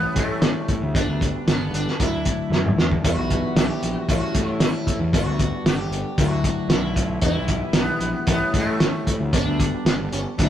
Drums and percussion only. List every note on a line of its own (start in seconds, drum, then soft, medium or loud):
0.16 kick medium
0.16 closed hi-hat medium
0.42 snare loud
0.42 closed hi-hat medium
0.68 kick medium
0.68 closed hi-hat medium
0.95 kick loud
0.95 closed hi-hat medium
1.21 kick medium
1.21 closed hi-hat medium
1.48 snare loud
1.48 closed hi-hat medium
1.74 closed hi-hat medium
1.88 snare soft
2.00 kick medium
2.00 closed hi-hat medium
2.25 kick medium
2.25 closed hi-hat medium
2.52 snare medium
2.66 mid tom medium
2.78 snare medium
2.92 kick medium
3.04 kick medium
3.04 closed hi-hat medium
3.30 kick medium
3.30 closed hi-hat medium
3.57 snare loud
3.57 closed hi-hat medium
3.83 closed hi-hat medium
4.09 kick loud
4.09 closed hi-hat medium
4.35 kick medium
4.35 closed hi-hat medium
4.60 snare loud
4.60 closed hi-hat medium
4.87 kick medium
4.87 closed hi-hat medium
5.13 kick loud
5.13 closed hi-hat medium
5.39 kick medium
5.39 closed hi-hat medium
5.66 snare loud
5.66 closed hi-hat medium
5.92 closed hi-hat medium
6.18 kick loud
6.18 closed hi-hat medium
6.44 kick medium
6.44 closed hi-hat medium
6.70 snare loud
6.70 closed hi-hat medium
6.96 kick medium
6.96 closed hi-hat medium
7.22 kick loud
7.22 closed hi-hat medium
7.48 kick medium
7.48 closed hi-hat medium
7.73 snare loud
7.73 closed hi-hat medium
8.01 closed hi-hat medium
8.27 kick loud
8.27 closed hi-hat medium
8.54 kick medium
8.54 closed hi-hat medium
8.80 snare loud
8.80 closed hi-hat medium
9.07 kick medium
9.07 closed hi-hat medium
9.33 kick loud
9.33 closed hi-hat medium
9.60 kick medium
9.60 closed hi-hat medium
9.86 snare loud
9.86 closed hi-hat medium
10.13 closed hi-hat medium
10.39 kick loud
10.39 closed hi-hat medium